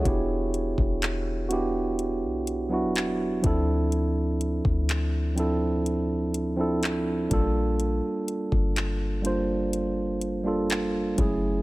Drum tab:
HH |x-x-x-x-x-x-x-x-|x-x-x-x-x-x-x-x-|x-x-x-x-x-x-x-x-|
CP |----x-------x---|----x-------x---|----x-------x---|
BD |o--o----------o-|---o----------o-|---o----------o-|